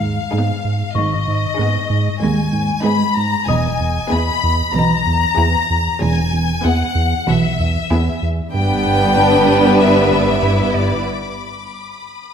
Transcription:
0.00 0.20 D#2 soft
0.00 0.19 G#2 soft
0.00 0.95 F5 soft
0.00 3.51 A#5 soft
0.33 0.52 G#2 medium
0.33 0.80 G#3 soft
0.33 0.80 B3 soft
0.33 0.80 D#4 soft
0.33 0.80 G#4 soft
0.65 0.83 G#2 soft
0.92 1.46 G#1 soft
0.92 1.14 G#2 medium
0.92 2.20 D#5 medium
0.92 2.81 C#6 soft
0.97 1.46 G#2 soft
1.28 1.47 G#2 soft
1.57 1.78 G#2 soft
1.57 2.06 G#3 soft
1.57 2.06 B3 soft
1.57 2.05 D#4 soft
1.57 2.06 G#4 soft
1.90 2.09 G#2 medium
2.19 2.72 D#2 soft
2.19 2.41 G#3 soft
2.19 2.83 G#5 soft
2.52 2.72 G#2 medium
2.83 3.03 G#2 medium
2.83 3.31 G#3 soft
2.83 3.32 B3 soft
2.83 3.32 D#4 soft
2.83 3.32 G#4 soft
2.83 3.16 B5 medium
3.16 3.36 G#2 medium
3.16 3.48 A#5 medium
3.46 3.98 E1 soft
3.46 3.98 E2 soft
3.46 3.68 E2 medium
3.46 5.34 D#5 soft
3.46 4.10 G#5 medium
3.46 5.34 D#6 soft
3.80 3.99 E2 medium
4.10 4.31 E2 soft
4.10 4.58 B3 soft
4.10 4.58 E4 soft
4.10 4.58 G#4 soft
4.10 4.74 B5 medium
4.44 4.62 E2 medium
4.73 5.24 B1 medium
4.73 5.25 B2 medium
4.73 4.94 E3 soft
4.73 6.00 A#5 medium
5.07 5.26 E2 soft
5.36 5.56 E2 medium
5.36 5.85 B3 soft
5.36 5.84 E4 soft
5.36 5.84 G#4 soft
5.70 5.89 E2 soft
6.00 6.51 E1 medium
6.00 6.51 E2 medium
6.00 6.20 E2 medium
6.00 6.64 G#5 medium
6.33 6.52 E2 medium
6.63 6.84 E2 soft
6.63 7.11 B3 soft
6.63 7.11 E4 soft
6.63 7.11 G#4 soft
6.63 7.28 F#5 medium
6.95 7.14 E2 medium
7.27 7.78 B1 medium
7.27 7.77 B2 medium
7.27 7.46 E3 soft
7.27 8.23 E5 medium
7.59 7.78 E2 soft
7.91 8.10 E2 medium
7.91 8.38 B3 soft
7.91 8.38 E4 soft
7.91 8.38 G#4 soft
8.23 8.41 E2 soft
8.53 11.03 G1 soft
8.53 8.73 G2 medium
8.53 11.03 G2 soft
8.53 11.02 G3 soft
8.53 11.02 B3 soft
8.53 10.39 D4 medium
8.53 11.03 B4 medium
8.53 9.76 G5 medium
8.53 12.34 B5 soft
8.86 9.05 G2 soft
9.17 9.36 G2 soft
9.17 11.03 A5 soft
9.17 12.22 D6 soft
9.48 9.67 G2 medium
9.79 9.99 G3 soft
9.79 10.74 E5 medium
10.12 10.31 G2 soft
10.43 10.62 G2 medium
10.43 11.06 E4 soft
10.74 10.93 G2 soft
10.74 11.06 D5 soft
12.22 12.34 D#6 soft

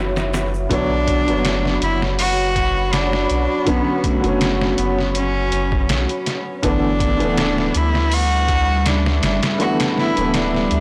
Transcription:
0.00 0.67 F#1 medium
0.00 0.65 E3 medium
0.00 0.66 F#3 medium
0.00 0.67 B3 medium
0.00 0.69 C#4 medium
0.00 0.68 F#4 medium
0.00 0.68 C#5 medium
0.00 0.66 E5 medium
0.00 0.68 B5 medium
0.16 snare loud
0.16 closed hi-hat medium
0.16 shaker soft
0.34 snare medium
0.34 closed hi-hat medium
0.34 shaker medium
0.54 shaker soft
0.69 1.29 B1 loud
0.69 1.22 D3 medium
0.69 1.23 F#3 medium
0.69 1.23 B3 medium
0.69 1.78 D4 loud
0.69 6.59 F#4 medium
0.69 6.59 C#5 medium
0.69 1.24 C#5 loud
0.69 6.59 B5 medium
0.69 kick loud
0.69 closed hi-hat medium
1.08 kick medium
1.08 closed hi-hat medium
1.25 1.79 F#1 loud
1.25 3.61 D3 medium
1.25 3.63 F#3 medium
1.25 closed hi-hat soft
1.30 3.64 B3 medium
1.30 3.65 C#5 medium
1.45 snare loud
1.45 closed hi-hat medium
1.65 snare soft
1.82 3.27 F#1 loud
1.82 2.00 E4 loud
1.82 closed hi-hat medium
2.02 snare soft
2.19 2.95 F#4 loud
2.19 open hi-hat medium
2.56 kick medium
2.56 closed hi-hat medium
2.93 3.70 D4 loud
2.93 snare loud
2.93 closed hi-hat medium
3.13 snare medium
3.30 3.48 B1 medium
3.30 closed hi-hat medium
3.65 4.18 D3 medium
3.65 4.19 F#3 medium
3.65 4.19 B3 medium
3.65 4.07 B3 loud
3.65 4.20 C#4 loud
3.65 kick loud
3.65 closed hi-hat medium
4.04 4.80 A3 medium
4.04 kick medium
4.04 closed hi-hat medium
4.20 4.75 F#1 loud
4.20 6.57 D3 medium
4.20 6.59 F#3 medium
4.20 closed hi-hat soft
4.25 6.60 B3 medium
4.25 6.61 C#4 loud
4.41 snare loud
4.41 closed hi-hat medium
4.61 snare medium
4.78 5.51 F#1 loud
4.78 5.15 B3 medium
4.78 closed hi-hat medium
4.99 snare soft
5.15 5.86 C#4 medium
5.15 closed hi-hat medium
5.52 5.91 F#1 medium
5.52 closed hi-hat medium
5.72 kick loud
5.89 6.07 B1 medium
5.89 snare loud
5.89 closed hi-hat medium
6.09 closed hi-hat soft
6.26 snare soft
6.26 closed hi-hat medium
6.62 7.22 G1 medium
6.62 7.15 D3 loud
6.62 7.16 E3 medium
6.62 10.80 G3 medium
6.62 7.16 A3 medium
6.62 7.79 D4 loud
6.62 10.80 E5 medium
6.62 10.80 B5 medium
6.62 kick loud
6.62 closed hi-hat medium
6.66 7.17 B3 loud
7.00 kick loud
7.00 closed hi-hat medium
7.17 7.71 D1 loud
7.17 9.54 D3 medium
7.17 9.55 E3 medium
7.17 closed hi-hat soft
7.22 9.56 A3 medium
7.22 9.58 B3 medium
7.38 snare loud
7.38 closed hi-hat medium
7.58 snare soft
7.75 9.20 D2 loud
7.75 8.15 E4 loud
7.75 closed hi-hat medium
7.95 snare medium
8.12 8.89 F#4 loud
8.12 open hi-hat medium
8.48 kick loud
8.48 closed hi-hat medium
8.86 9.24 D4 medium
8.86 snare loud
8.86 closed hi-hat medium
9.06 snare medium
9.23 9.40 G1 medium
9.23 9.41 D4 medium
9.23 snare loud
9.23 closed hi-hat medium
9.43 snare loud
9.43 closed hi-hat medium
9.58 10.11 D3 loud
9.58 10.12 E3 medium
9.58 10.12 A3 medium
9.58 10.13 B3 loud
9.58 9.78 F#4 loud
9.58 closed hi-hat medium
9.80 snare loud
9.80 closed hi-hat medium
9.98 10.37 E4 medium
9.98 snare soft
10.14 10.68 D1 medium
10.14 10.80 D3 medium
10.14 10.80 E3 medium
10.14 closed hi-hat medium
10.19 10.80 A3 medium
10.19 10.80 B3 loud
10.34 10.80 D4 medium
10.34 snare loud
10.34 closed hi-hat medium
10.55 snare soft
10.71 10.80 D2 loud
10.71 closed hi-hat medium

